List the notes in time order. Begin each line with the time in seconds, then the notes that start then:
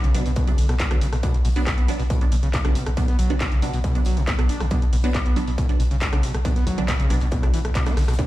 0.04 B1 C#3, closed hi-hat
0.14 B1 B2 F#3 B3 D4, closed hi-hat, open hi-hat
0.26 B1 B2, closed hi-hat, open hi-hat
0.36 B2, kick, closed hi-hat
0.47 B1 C#3 F#3 B3 D4, closed hi-hat
0.58 B1 D3, snare, closed hi-hat, open hi-hat
0.69 B1 B2, cross-stick, snare, closed hi-hat
0.79 B2, kick, snare, clap, closed hi-hat
0.91 B1 D3 F#3 B3 D4, cross-stick, closed hi-hat
1.01 B1 C#3, closed hi-hat, open hi-hat
1.13 B1 B2, cross-stick, open hi-hat
1.23 B2 F#3 B3 D4, kick, closed hi-hat
1.34 B1 B2, closed hi-hat
1.45 B1 B2, open hi-hat
1.56 B1 F#3 B3 D4, closed hi-hat
1.66 B2, kick, snare, clap, closed hi-hat
1.78 B1 B3, closed hi-hat
1.88 B1 B2 F#3 B3 D4, closed hi-hat, open hi-hat
2.00 B1 B2, open hi-hat
2.10 B2, kick, closed hi-hat
2.21 B1 B2 F#3 B3 D4, closed hi-hat
2.32 B1 B2, closed hi-hat, open hi-hat
2.43 B1 C#3, snare, closed hi-hat
2.54 B2, kick, snare, clap, closed hi-hat
2.65 B1 C#3 F#3 B3 D4, cross-stick, closed hi-hat
2.75 B1 B2, closed hi-hat, open hi-hat
2.86 B1 B2, cross-stick, closed hi-hat
2.97 B2 F#3 B3 D4, kick, closed hi-hat
3.08 B1 B3, snare, closed hi-hat
3.19 B1 F#3, closed hi-hat, open hi-hat
3.30 B1 B2 F#3 B3 D4, closed hi-hat
3.40 B2, kick, snare, clap, closed hi-hat
3.52 B1 C#3, closed hi-hat
3.62 B1 B2 F#3 B3 D4, closed hi-hat, open hi-hat
3.73 B1 B2, closed hi-hat, open hi-hat
3.84 B2, kick, closed hi-hat
3.95 B1 C#3 F#3 B3 D4, closed hi-hat
4.05 B1 F#3, snare, closed hi-hat, open hi-hat
4.17 B1 B2, snare, closed hi-hat
4.27 B2, kick, snare, clap, closed hi-hat
4.39 B1 B2 F#3 B3 D4, cross-stick, closed hi-hat
4.49 B1 D4, closed hi-hat, open hi-hat
4.60 B1 B2, cross-stick, open hi-hat
4.71 B2 F#3 B3 D4, kick, closed hi-hat
4.82 B1 B2, closed hi-hat
4.93 B1 B2, open hi-hat
5.04 B1 F#3 B3 D4, closed hi-hat
5.14 B2, kick, snare, clap, closed hi-hat
5.26 B1 B3, closed hi-hat
5.36 B1 B2 F#3 B3 D4, closed hi-hat, open hi-hat
5.47 B1 B2, open hi-hat
5.58 B2, kick, closed hi-hat
5.69 B1 B2 F#3 B3 D4, closed hi-hat
5.80 B1 B2, closed hi-hat, open hi-hat
5.91 B1 C#3, snare, closed hi-hat
6.01 B2, kick, snare, clap, closed hi-hat
6.12 B1 C#3 F#3 B3 D4, cross-stick, closed hi-hat
6.23 B1 B2, closed hi-hat, open hi-hat
6.34 B1 B2, cross-stick, closed hi-hat
6.45 B2 F#3 B3 D4, kick, closed hi-hat
6.56 B1 B3, snare, closed hi-hat
6.67 B1 F#3, kick, closed hi-hat, open hi-hat
6.78 B1 B2 F#3 B3 D4, closed hi-hat
6.88 B2, kick, snare, clap, closed hi-hat
7.00 B1 C#3, closed hi-hat
7.10 B1 B2 F#3 B3 D4, closed hi-hat, open hi-hat
7.20 B1 B2, closed hi-hat, open hi-hat
7.31 B2, kick, closed hi-hat
7.43 B1 C#3 F#3 B3 D4, cross-stick, closed hi-hat
7.53 B1 E3, closed hi-hat, open hi-hat
7.65 B1, cross-stick, closed hi-hat
7.75 B2, kick, clap, closed hi-hat
7.86 B1 F#3 B3 D4, cross-stick, snare, closed hi-hat
7.97 B1 D3, cross-stick, snare, closed hi-hat, open hi-hat
8.02 snare, closed hi-hat
8.08 B1 B2, cross-stick, snare, closed hi-hat, open hi-hat
8.13 snare, closed hi-hat
8.19 B2 F#3 B3 D4, kick, closed hi-hat